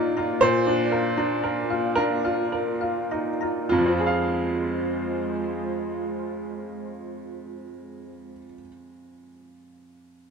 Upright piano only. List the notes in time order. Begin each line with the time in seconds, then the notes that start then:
Already playing: A#2 D4 D#4 F4 A#4
0.17 F4
0.41 A#2 C5
0.67 D4
0.92 A#4
1.18 D4
1.44 A#4
1.70 F4
1.95 D4 A#4
2.25 F4
2.53 A#4
2.82 F4
3.12 D#4
3.42 F4
3.69 F2 F4
3.79 F3
3.86 C4
3.93 F4
3.99 G#4
4.06 F5